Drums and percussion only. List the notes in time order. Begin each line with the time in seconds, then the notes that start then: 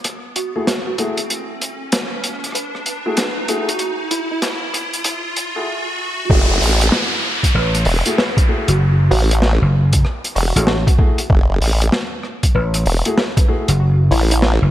0.04 cross-stick, closed hi-hat
0.36 closed hi-hat
0.67 snare, closed hi-hat
0.98 closed hi-hat
1.17 closed hi-hat
1.30 closed hi-hat
1.61 closed hi-hat
1.92 snare, closed hi-hat
2.24 cross-stick, closed hi-hat
2.29 cross-stick
2.34 cross-stick
2.39 cross-stick
2.44 cross-stick, closed hi-hat
2.46 cross-stick
2.49 cross-stick
2.52 cross-stick, closed hi-hat
2.75 cross-stick
2.86 closed hi-hat
3.17 snare, closed hi-hat
3.48 closed hi-hat
3.69 closed hi-hat
3.79 closed hi-hat
4.11 closed hi-hat
4.42 snare, closed hi-hat
4.74 cross-stick, closed hi-hat
4.93 closed hi-hat
5.04 cross-stick, closed hi-hat
5.36 closed hi-hat
6.30 kick
6.61 open hi-hat
6.81 closed hi-hat
6.92 snare
7.24 cross-stick
7.43 kick, closed hi-hat
7.75 cross-stick, closed hi-hat
7.85 open hi-hat
8.05 closed hi-hat
8.18 snare
8.37 kick, closed hi-hat
8.68 closed hi-hat
9.11 open hi-hat
9.31 closed hi-hat
9.42 snare
9.93 kick, closed hi-hat
10.05 cross-stick
10.24 closed hi-hat
10.36 open hi-hat
10.56 closed hi-hat
10.67 snare
10.87 kick, closed hi-hat
10.99 kick
11.18 closed hi-hat
11.30 kick
11.62 open hi-hat
11.82 closed hi-hat
11.92 snare
12.23 cross-stick
12.43 kick, closed hi-hat
12.74 cross-stick, closed hi-hat
12.86 open hi-hat
13.05 closed hi-hat
13.18 snare
13.37 kick, closed hi-hat
13.68 closed hi-hat
14.11 open hi-hat
14.31 closed hi-hat
14.42 snare